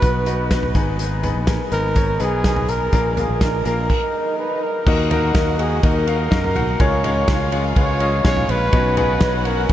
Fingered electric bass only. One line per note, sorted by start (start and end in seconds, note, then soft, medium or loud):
0.03 0.71 B1 medium
0.75 1.31 G#1 medium
1.36 1.58 A#1 medium
1.72 2.17 G#1 medium
2.20 2.89 B1 medium
2.93 3.27 A#1 medium
3.29 3.63 A#1 medium
3.66 3.88 A#1 medium
4.87 5.32 D#2 loud
5.35 5.80 D#2 medium
5.83 6.28 D#2 medium
6.32 6.54 F#2 loud
6.56 6.78 B1 medium
6.80 7.25 C#2 loud
7.28 7.73 C#2 loud
7.76 8.21 C#2 loud
8.25 8.47 B1 loud
8.48 8.71 A#1 medium
8.73 9.18 B1 loud
9.21 9.66 B1 loud
9.69 9.73 B1 medium